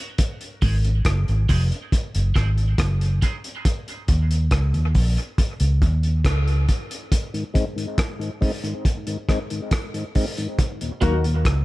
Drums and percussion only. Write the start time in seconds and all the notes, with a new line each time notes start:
0.18 kick, closed hi-hat
0.41 closed hi-hat
0.62 kick, open hi-hat
0.85 closed hi-hat
1.05 kick, cross-stick, closed hi-hat
1.28 closed hi-hat
1.49 kick, open hi-hat
1.72 closed hi-hat
1.92 kick, closed hi-hat
2.15 closed hi-hat
2.36 kick, cross-stick, closed hi-hat
2.58 closed hi-hat
2.78 kick, cross-stick, closed hi-hat
3.01 closed hi-hat
3.22 kick, closed hi-hat
3.44 closed hi-hat
3.65 kick, closed hi-hat
3.88 closed hi-hat
4.08 kick, closed hi-hat
4.31 closed hi-hat
4.51 kick, cross-stick, closed hi-hat
4.74 closed hi-hat
4.95 kick, open hi-hat
5.17 closed hi-hat
5.38 kick, closed hi-hat
5.60 closed hi-hat
5.82 kick, closed hi-hat
6.03 closed hi-hat
6.25 kick, cross-stick, closed hi-hat
6.48 closed hi-hat
6.69 kick, closed hi-hat
6.91 closed hi-hat
7.12 kick, closed hi-hat
7.34 closed hi-hat
7.55 kick, closed hi-hat
7.78 closed hi-hat
7.98 kick, cross-stick, closed hi-hat
8.21 closed hi-hat
8.42 kick, open hi-hat
8.64 closed hi-hat
8.85 kick, closed hi-hat
9.07 closed hi-hat
9.29 kick, cross-stick, closed hi-hat
9.50 closed hi-hat
9.71 kick, cross-stick, closed hi-hat
9.94 closed hi-hat
10.15 kick, open hi-hat
10.38 closed hi-hat
10.58 kick, closed hi-hat, low conga
10.81 closed hi-hat
11.02 kick, closed hi-hat
11.24 closed hi-hat
11.45 kick, cross-stick, closed hi-hat, high conga